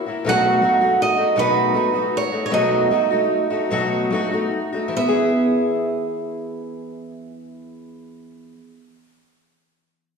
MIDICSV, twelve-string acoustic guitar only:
0, 0, Header, 1, 2, 480
1, 0, Start_track
1, 0, Key_signature, 4, "major"
1, 0, Tempo, 753769
1, 163, Time_signature, 6, 3, 24, 8
1, 1606, Tempo, 795756
1, 2566, Tempo, 846262
1, 6002, End_track
2, 0, Start_track
2, 0, Title_t, "Twelve-string acoustic guitar"
2, 0, Program_c, 0, 25
2, 40, Note_on_c, 0, 66, 47
2, 52, Note_on_c, 0, 64, 46
2, 58, Note_on_c, 0, 58, 41
2, 156, Note_on_c, 0, 47, 82
2, 161, Note_off_c, 0, 66, 0
2, 164, Note_off_c, 0, 58, 0
2, 166, Note_on_c, 0, 57, 88
2, 167, Note_off_c, 0, 64, 0
2, 167, Note_on_c, 0, 54, 86
2, 172, Note_on_c, 0, 66, 90
2, 173, Note_on_c, 0, 63, 91
2, 385, Note_off_c, 0, 54, 0
2, 393, Note_off_c, 0, 57, 0
2, 393, Note_on_c, 0, 54, 66
2, 396, Note_off_c, 0, 47, 0
2, 398, Note_off_c, 0, 63, 0
2, 401, Note_on_c, 0, 57, 61
2, 404, Note_off_c, 0, 66, 0
2, 406, Note_on_c, 0, 63, 69
2, 412, Note_on_c, 0, 66, 69
2, 509, Note_off_c, 0, 66, 0
2, 515, Note_off_c, 0, 54, 0
2, 517, Note_on_c, 0, 66, 64
2, 519, Note_off_c, 0, 57, 0
2, 521, Note_off_c, 0, 63, 0
2, 528, Note_on_c, 0, 63, 47
2, 536, Note_on_c, 0, 57, 47
2, 734, Note_off_c, 0, 66, 0
2, 741, Note_on_c, 0, 66, 58
2, 743, Note_off_c, 0, 63, 0
2, 751, Note_on_c, 0, 63, 50
2, 755, Note_off_c, 0, 57, 0
2, 763, Note_on_c, 0, 57, 45
2, 864, Note_on_c, 0, 47, 80
2, 868, Note_off_c, 0, 57, 0
2, 869, Note_off_c, 0, 66, 0
2, 869, Note_on_c, 0, 54, 82
2, 870, Note_off_c, 0, 63, 0
2, 875, Note_on_c, 0, 57, 88
2, 877, Note_on_c, 0, 63, 88
2, 881, Note_on_c, 0, 66, 85
2, 1098, Note_off_c, 0, 54, 0
2, 1101, Note_off_c, 0, 57, 0
2, 1106, Note_on_c, 0, 54, 55
2, 1108, Note_off_c, 0, 63, 0
2, 1109, Note_on_c, 0, 57, 60
2, 1111, Note_off_c, 0, 47, 0
2, 1115, Note_on_c, 0, 63, 66
2, 1116, Note_off_c, 0, 66, 0
2, 1123, Note_on_c, 0, 66, 68
2, 1225, Note_off_c, 0, 66, 0
2, 1232, Note_on_c, 0, 66, 54
2, 1233, Note_off_c, 0, 54, 0
2, 1234, Note_off_c, 0, 57, 0
2, 1235, Note_off_c, 0, 63, 0
2, 1242, Note_on_c, 0, 63, 51
2, 1252, Note_on_c, 0, 57, 42
2, 1470, Note_off_c, 0, 66, 0
2, 1478, Note_on_c, 0, 66, 54
2, 1482, Note_off_c, 0, 63, 0
2, 1486, Note_off_c, 0, 57, 0
2, 1490, Note_on_c, 0, 63, 48
2, 1494, Note_on_c, 0, 57, 43
2, 1594, Note_on_c, 0, 47, 77
2, 1595, Note_off_c, 0, 57, 0
2, 1597, Note_off_c, 0, 63, 0
2, 1598, Note_on_c, 0, 54, 84
2, 1600, Note_off_c, 0, 66, 0
2, 1602, Note_on_c, 0, 57, 92
2, 1605, Note_on_c, 0, 63, 100
2, 1608, Note_on_c, 0, 66, 84
2, 1830, Note_off_c, 0, 54, 0
2, 1835, Note_off_c, 0, 47, 0
2, 1836, Note_off_c, 0, 57, 0
2, 1837, Note_on_c, 0, 54, 60
2, 1840, Note_off_c, 0, 63, 0
2, 1842, Note_off_c, 0, 66, 0
2, 1843, Note_on_c, 0, 57, 66
2, 1849, Note_on_c, 0, 63, 70
2, 1857, Note_on_c, 0, 66, 60
2, 1950, Note_off_c, 0, 66, 0
2, 1957, Note_off_c, 0, 54, 0
2, 1958, Note_on_c, 0, 66, 54
2, 1961, Note_off_c, 0, 57, 0
2, 1961, Note_off_c, 0, 63, 0
2, 1968, Note_on_c, 0, 63, 53
2, 1975, Note_on_c, 0, 57, 49
2, 2191, Note_off_c, 0, 66, 0
2, 2198, Note_on_c, 0, 66, 63
2, 2201, Note_off_c, 0, 63, 0
2, 2207, Note_off_c, 0, 57, 0
2, 2208, Note_on_c, 0, 63, 55
2, 2215, Note_on_c, 0, 57, 54
2, 2318, Note_off_c, 0, 57, 0
2, 2320, Note_off_c, 0, 63, 0
2, 2320, Note_off_c, 0, 66, 0
2, 2320, Note_on_c, 0, 47, 82
2, 2325, Note_on_c, 0, 54, 89
2, 2325, Note_on_c, 0, 57, 90
2, 2327, Note_on_c, 0, 63, 86
2, 2331, Note_on_c, 0, 66, 104
2, 2553, Note_off_c, 0, 54, 0
2, 2561, Note_on_c, 0, 54, 73
2, 2565, Note_off_c, 0, 47, 0
2, 2565, Note_off_c, 0, 57, 0
2, 2569, Note_off_c, 0, 63, 0
2, 2571, Note_off_c, 0, 66, 0
2, 2572, Note_on_c, 0, 57, 75
2, 2576, Note_on_c, 0, 63, 69
2, 2582, Note_on_c, 0, 66, 82
2, 2673, Note_off_c, 0, 66, 0
2, 2679, Note_on_c, 0, 66, 60
2, 2680, Note_off_c, 0, 54, 0
2, 2684, Note_off_c, 0, 63, 0
2, 2685, Note_off_c, 0, 57, 0
2, 2690, Note_on_c, 0, 63, 54
2, 2696, Note_on_c, 0, 57, 54
2, 2906, Note_off_c, 0, 66, 0
2, 2913, Note_on_c, 0, 66, 57
2, 2916, Note_off_c, 0, 63, 0
2, 2923, Note_on_c, 0, 63, 51
2, 2926, Note_off_c, 0, 57, 0
2, 2932, Note_on_c, 0, 57, 44
2, 3002, Note_on_c, 0, 52, 87
2, 3036, Note_off_c, 0, 66, 0
2, 3041, Note_off_c, 0, 63, 0
2, 3045, Note_off_c, 0, 57, 0
2, 3049, Note_on_c, 0, 59, 90
2, 3116, Note_on_c, 0, 68, 92
2, 5065, Note_off_c, 0, 52, 0
2, 5112, Note_off_c, 0, 59, 0
2, 5180, Note_off_c, 0, 68, 0
2, 6002, End_track
0, 0, End_of_file